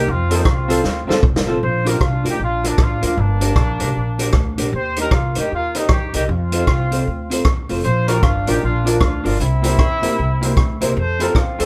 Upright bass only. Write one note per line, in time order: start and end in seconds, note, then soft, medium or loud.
0.08 0.40 F2 loud
0.45 0.78 C2 medium
0.84 1.05 D2 medium
1.09 1.21 D#2 medium
1.23 1.56 F1 medium
1.63 1.95 A#1 loud
2.01 2.21 C2 medium
2.25 2.37 D2 medium
2.39 2.73 A#1 medium
2.78 2.99 A1 medium
3.03 3.15 D2 medium
3.17 3.51 G1 loud
3.56 3.77 A#1 loud
3.81 3.93 C2 loud
3.96 4.29 A#1 medium
4.34 4.60 D2 loud
4.58 4.71 A#1 medium
4.73 5.06 D#2 loud
5.12 5.32 C2 medium
5.37 5.49 D2 medium
5.52 5.85 D#2 medium
5.89 6.10 F2 medium
6.15 6.27 C2 medium
6.29 6.62 F2 loud
6.68 7.01 C2 loud
7.07 7.40 D2 medium
7.70 7.83 F1 medium
7.84 8.17 A#1 loud
8.23 8.44 G1 loud
8.48 8.60 A1 medium
8.63 8.96 A#1 medium
9.01 9.22 D2 medium
9.25 9.38 G1 medium
9.40 9.73 C2 loud
10.03 10.16 D2 medium
10.19 10.52 C2 loud
10.57 10.77 D2 loud
10.82 10.94 C2 medium
10.97 11.29 F2 loud
11.36 11.56 D#2 medium
11.59 11.65 D2 loud